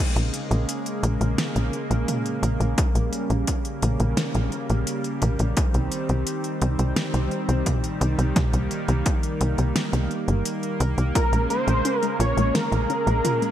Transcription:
0.00 5.53 C#3 medium
0.00 2.75 G#3 medium
0.00 5.53 A#3 medium
0.16 0.31 A#1 medium
0.16 closed hi-hat soft
0.34 closed hi-hat medium
0.51 0.66 A#1 medium
0.51 closed hi-hat soft
0.69 closed hi-hat medium
0.86 closed hi-hat soft
1.03 1.19 A#1 loud
1.03 closed hi-hat medium
1.21 1.36 A#1 medium
1.21 closed hi-hat soft
1.38 snare loud
1.38 closed hi-hat medium
1.56 1.71 A#1 medium
1.56 closed hi-hat soft
1.73 closed hi-hat soft
1.91 2.06 A#1 medium
1.91 closed hi-hat soft
2.08 closed hi-hat medium
2.08 mid tom medium
2.26 closed hi-hat soft
2.43 2.58 A#1 medium
2.43 closed hi-hat medium
2.60 2.76 A#1 medium
2.60 closed hi-hat soft
2.78 11.11 G3 medium
2.78 kick loud
2.78 closed hi-hat medium
2.95 3.10 A#1 medium
2.95 closed hi-hat soft
3.13 closed hi-hat medium
3.30 3.45 A#1 medium
3.30 closed hi-hat soft
3.47 kick medium
3.47 closed hi-hat medium
3.65 closed hi-hat soft
3.82 3.98 A#1 medium
3.82 closed hi-hat medium
4.00 4.15 A#1 medium
4.00 closed hi-hat soft
4.17 snare loud
4.17 closed hi-hat medium
4.35 4.50 A#1 medium
4.35 closed hi-hat soft
4.52 closed hi-hat soft
4.70 4.85 A#1 medium
4.70 closed hi-hat soft
4.87 closed hi-hat medium
5.04 closed hi-hat soft
5.22 5.37 A#1 medium
5.22 closed hi-hat medium
5.22 mid tom medium
5.39 5.55 A#1 medium
5.39 closed hi-hat soft
5.57 11.11 D#3 medium
5.57 8.33 C4 medium
5.57 kick loud
5.57 closed hi-hat medium
5.74 5.90 C2 medium
5.74 closed hi-hat soft
5.92 closed hi-hat medium
6.09 6.25 C2 medium
6.09 closed hi-hat soft
6.27 closed hi-hat loud
6.44 closed hi-hat soft
6.62 6.77 C2 loud
6.62 closed hi-hat medium
6.79 6.94 C2 medium
6.79 closed hi-hat soft
6.96 snare loud
6.96 closed hi-hat medium
7.14 7.29 C2 medium
7.14 closed hi-hat soft
7.31 closed hi-hat soft
7.49 7.64 C2 medium
7.49 closed hi-hat soft
7.66 kick medium
7.66 closed hi-hat medium
7.66 mid tom medium
7.84 closed hi-hat soft
8.01 8.16 C2 medium
8.01 closed hi-hat medium
8.19 8.34 C2 medium
8.19 closed hi-hat soft
8.36 13.51 A#3 medium
8.36 kick loud
8.36 snare soft
8.36 closed hi-hat medium
8.36 mid tom loud
8.53 8.69 C2 medium
8.53 closed hi-hat soft
8.71 closed hi-hat medium
8.88 9.04 C2 medium
8.88 closed hi-hat soft
9.06 kick loud
9.06 closed hi-hat medium
9.23 closed hi-hat soft
9.41 9.56 C2 medium
9.41 closed hi-hat medium
9.58 9.73 C2 medium
9.58 closed hi-hat soft
9.76 snare loud
9.76 closed hi-hat medium
9.93 10.08 C2 medium
9.93 closed hi-hat soft
10.11 closed hi-hat soft
10.28 10.43 G1 medium
10.28 closed hi-hat soft
10.45 closed hi-hat medium
10.63 closed hi-hat soft
10.80 10.96 C2 medium
10.80 closed hi-hat medium
10.98 11.13 C2 medium
10.98 closed hi-hat soft
11.15 13.51 C#3 medium
11.15 13.51 G#3 medium
11.15 11.25 F4 medium
11.15 11.48 A#4 medium
11.15 kick loud
11.15 closed hi-hat medium
11.33 11.48 A#1 medium
11.33 11.48 G#3 medium
11.33 closed hi-hat soft
11.50 11.60 G#3 medium
11.50 11.99 C5 loud
11.50 closed hi-hat medium
11.68 11.83 A#1 medium
11.68 closed hi-hat soft
11.85 12.02 C#4 loud
11.85 closed hi-hat medium
11.99 12.18 G#3 medium
11.99 12.16 A#4 loud
11.99 closed hi-hat soft
12.20 12.35 A#1 medium
12.20 12.29 F4 medium
12.20 12.56 C#5 loud
12.20 closed hi-hat medium
12.37 12.52 A#1 medium
12.37 12.53 G#3 medium
12.37 closed hi-hat soft
12.54 12.64 G#3 medium
12.54 13.51 A#4 loud
12.54 snare loud
12.54 closed hi-hat medium
12.72 12.87 A#1 medium
12.72 closed hi-hat soft
12.90 13.06 C#4 loud
12.90 closed hi-hat soft
13.07 13.22 A#1 medium
13.07 13.23 G#3 medium
13.07 closed hi-hat soft
13.25 13.34 F4 medium
13.25 closed hi-hat medium
13.25 mid tom medium
13.42 13.51 G#3 medium
13.42 closed hi-hat soft

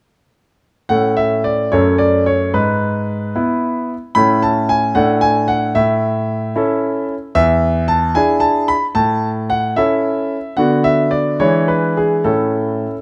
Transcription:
0.89 1.70 A2 soft
0.89 1.68 A3 soft
0.89 1.68 C#4 soft
0.89 1.69 A4 soft
0.89 1.17 F#5 medium
1.17 1.42 E5 medium
1.44 1.72 D5 medium
1.72 2.51 F#2 medium
1.72 2.50 A3 soft
1.72 2.50 C#4 soft
1.72 2.50 A4 soft
1.72 1.99 C#5 medium
1.98 2.23 D5 medium
2.26 2.51 C#5 medium
2.54 3.32 G#2 soft
2.54 3.88 B4 medium
3.36 3.93 B3 soft
3.36 3.93 E4 soft
4.15 4.93 A2 medium
4.15 4.91 C#4 soft
4.15 4.92 E4 soft
4.15 4.92 A4 soft
4.15 4.42 B5 medium
4.42 4.69 A5 medium
4.69 4.93 G#5 medium
4.95 5.73 A2 medium
4.95 5.72 D4 soft
4.95 5.72 A4 soft
4.95 5.22 F#5 medium
5.21 5.48 G#5 medium
5.48 5.72 F#5 medium
5.75 6.53 A2 medium
5.75 7.05 E5 medium
6.56 7.13 C#4 soft
6.56 7.13 E4 soft
6.56 7.14 A4 medium
7.35 8.13 E2 medium
7.35 7.84 E5 medium
7.88 8.15 A5 medium
8.15 8.73 D4 soft
8.15 8.73 E4 soft
8.15 8.74 G#4 soft
8.15 8.42 G#5 medium
8.40 8.68 A5 medium
8.68 8.85 B5 medium
8.95 9.74 A2 medium
8.95 9.27 A5 medium
9.50 9.77 F#5 medium
9.76 10.35 C#4 soft
9.76 10.36 E4 soft
9.76 10.36 A4 soft
9.76 10.58 E5 medium
10.57 11.38 D3 soft
10.57 11.36 B3 soft
10.57 11.37 D4 soft
10.57 11.37 F#4 soft
10.57 10.85 F#5 medium
10.84 11.09 E5 medium
11.11 11.39 D5 medium
11.40 12.22 E3 medium
11.40 12.21 G#3 soft
11.40 12.21 D4 soft
11.40 12.21 E4 soft
11.40 11.68 C#5 medium
11.68 11.96 B4 medium
11.97 12.23 G#4 medium
12.24 12.85 A2 soft
12.24 12.94 C#4 soft
12.24 12.94 E4 soft
12.24 13.02 A4 medium

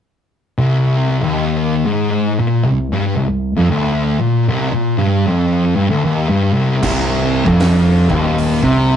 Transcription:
0.58 1.21 C2 loud
1.23 1.85 D#2 medium
1.86 2.38 G#2 medium
2.39 2.63 A#2 loud
2.64 2.87 C2 medium
2.93 3.16 G2 loud
3.17 3.51 C2 medium
3.56 3.70 F2 medium
3.70 4.19 D2 loud
4.20 4.48 A#2 loud
4.48 4.72 C2 loud
4.73 4.97 A#2 medium
4.98 5.26 G2 loud
5.27 5.75 F2 loud
5.76 5.89 G2 loud
5.90 6.04 D2 loud
6.04 6.28 D#2 loud
6.29 6.53 G2 medium
6.53 6.81 C2 medium
6.82 7.42 C1 medium
6.82 7.45 C2 loud
6.82 kick loud
6.82 crash loud
7.46 8.06 F1 medium
7.46 8.08 F2 loud
7.46 kick loud
7.60 snare loud
7.60 open hi-hat medium
8.10 8.59 D#1 medium
8.10 8.61 D#2 loud
8.10 kick loud
8.38 open hi-hat medium
8.63 8.96 C2 medium
8.63 8.96 C3 loud
8.63 kick loud

